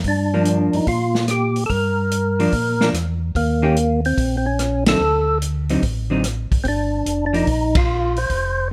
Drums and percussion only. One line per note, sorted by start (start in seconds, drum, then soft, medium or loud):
0.04 kick soft
0.04 open hi-hat soft
0.45 closed hi-hat medium
0.73 open hi-hat soft
0.87 kick soft
0.87 open hi-hat soft
1.15 snare soft
1.28 cross-stick medium
1.28 closed hi-hat soft
1.56 open hi-hat soft
1.70 kick soft
1.70 open hi-hat soft
2.11 closed hi-hat medium
2.40 open hi-hat soft
2.52 kick soft
2.52 open hi-hat soft
2.81 snare medium
2.94 cross-stick medium
2.94 closed hi-hat soft
3.35 kick soft
3.35 open hi-hat soft
3.76 closed hi-hat soft
4.05 open hi-hat soft
4.18 kick soft
4.18 open hi-hat soft
4.59 cross-stick medium
4.59 closed hi-hat medium
4.86 snare medium
4.86 ride medium
5.42 closed hi-hat medium
5.69 open hi-hat soft
5.83 kick soft
5.83 open hi-hat soft
6.24 cross-stick medium
6.24 closed hi-hat medium
6.52 kick soft
6.52 open hi-hat soft
6.65 kick soft
6.65 open hi-hat soft
7.06 closed hi-hat medium
7.34 open hi-hat soft
7.47 kick soft
7.47 open hi-hat soft
7.75 kick medium
7.75 ride medium
8.16 open hi-hat soft
8.30 kick soft
8.30 open hi-hat soft